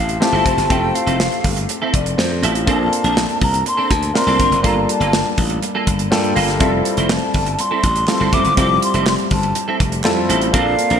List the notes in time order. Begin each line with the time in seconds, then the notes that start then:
Already playing: A1 A3 C4 F4 G4 F5
0.09 muted clean electric guitar stroke, closed hi-hat
0.20 A3 C4 E4 F4 G4 A5, muted clean electric guitar stroke, snare
0.32 G1 C4 E4 A4
0.45 F1 C4 E4 C5, kick, closed hi-hat
0.57 G1, muted clean electric guitar stroke, snare, closed hi-hat
0.69 F1 A3 C4 E4 F4 A4 G5, kick, closed hi-hat
0.83 muted clean electric guitar stroke
0.95 F5, muted clean electric guitar stroke, closed hi-hat
1.07 F1 C4 E4 A4, closed hi-hat
1.19 muted clean electric guitar stroke, snare
1.32 muted clean electric guitar stroke, closed hi-hat
1.44 G1, kick, open hi-hat
1.57 muted clean electric guitar stroke, closed hi-hat
1.69 muted clean electric guitar stroke, closed hi-hat
1.82 C4 E4 A4
1.93 F1 D5, muted clean electric guitar stroke, kick, closed hi-hat
2.06 muted clean electric guitar stroke, closed hi-hat
2.18 F2 C5, muted clean electric guitar stroke, snare
2.30 muted clean electric guitar stroke
2.42 A1 C4 E4 F4 A4, closed hi-hat
2.55 muted clean electric guitar stroke, closed hi-hat
2.66 A#1 A#3 C4 D4 F4 A4 A5, kick, closed hi-hat
2.80 muted clean electric guitar stroke
2.92 muted clean electric guitar stroke, closed hi-hat
3.04 A#1 C4 D4 A#4, closed hi-hat
3.17 muted clean electric guitar stroke, snare
3.29 muted clean electric guitar stroke, closed hi-hat
3.41 C2 A#5, kick, open hi-hat
3.54 muted clean electric guitar stroke, closed hi-hat
3.66 C6, muted clean electric guitar stroke, closed hi-hat
3.77 C4 D4 A4
3.90 D2 A5, muted clean electric guitar stroke, kick, closed hi-hat
4.02 muted clean electric guitar stroke, closed hi-hat
4.14 A#3 C4 D4 F4 A#4 C6, muted clean electric guitar stroke, snare
4.27 C2 C4 D4 A4, snare, closed hi-hat
4.39 G1 C4 D4 A#4, kick, closed hi-hat
4.51 F1, muted clean electric guitar stroke, closed hi-hat
4.63 G1 G3 A#3 D4 F4 A4 A#5, kick, closed hi-hat
4.76 muted clean electric guitar stroke
4.88 A5, muted clean electric guitar stroke, closed hi-hat
5.00 G1 A#3 F4 A4, closed hi-hat
5.13 muted clean electric guitar stroke, snare
5.26 muted clean electric guitar stroke
5.38 A1, kick, open hi-hat
5.50 muted clean electric guitar stroke, closed hi-hat
5.63 muted clean electric guitar stroke, closed hi-hat
5.75 A#3 F4 A4
5.87 G1, muted clean electric guitar stroke, kick, closed hi-hat
5.99 muted clean electric guitar stroke, closed hi-hat
6.11 G2 G3 A#3 D4 F4 A4 G5, muted clean electric guitar stroke, snare
6.24 muted clean electric guitar stroke, closed hi-hat
6.36 G1 A#3 F4 A4 F5, open hi-hat
6.48 muted clean electric guitar stroke, snare, closed hi-hat
6.60 F1 G3 C4 E4 F4 A4, kick, closed hi-hat
6.73 muted clean electric guitar stroke
6.85 muted clean electric guitar stroke, closed hi-hat
6.97 F1 C4 E4 C5, closed hi-hat
7.09 A5, muted clean electric guitar stroke, snare, clap
7.22 muted clean electric guitar stroke
7.34 G1, kick, open hi-hat
7.46 muted clean electric guitar stroke, closed hi-hat
7.59 C6, muted clean electric guitar stroke, closed hi-hat
7.71 C4 E4 A4
7.83 A1, muted clean electric guitar stroke, kick, closed hi-hat
7.96 muted clean electric guitar stroke, closed hi-hat
8.07 G3 C4 E4 F4 A4, muted clean electric guitar stroke, snare, clap
8.20 G1 C4 E4 A4
8.32 F1 C4 E4 C5 D6, kick, closed hi-hat
8.45 G1, muted clean electric guitar stroke, closed hi-hat
8.57 F1 G3 C4 E4 F4 G4 A4 D6, kick, closed hi-hat
8.70 muted clean electric guitar stroke
8.82 C6, muted clean electric guitar stroke, closed hi-hat
8.94 F1 C4 E4 A4, closed hi-hat
9.06 C6, muted clean electric guitar stroke, snare, clap
9.18 muted clean electric guitar stroke, closed hi-hat
9.31 G1 A5, kick, open hi-hat
9.43 muted clean electric guitar stroke, closed hi-hat
9.55 muted clean electric guitar stroke, closed hi-hat
9.68 C4 E4 A4
9.80 F1, muted clean electric guitar stroke, kick, closed hi-hat
9.92 muted clean electric guitar stroke, closed hi-hat
10.04 F2 G3 C4 E4 F4 A4, muted clean electric guitar stroke, snare, clap
10.17 muted clean electric guitar stroke
10.29 A1 C4 E4 A4, closed hi-hat
10.41 muted clean electric guitar stroke, closed hi-hat
10.52 A#1 A#3 C4 D4 F4 A4 F5, kick, closed hi-hat
10.66 muted clean electric guitar stroke
10.79 muted clean electric guitar stroke, closed hi-hat
10.90 A#1 C4 D4 A#4, closed hi-hat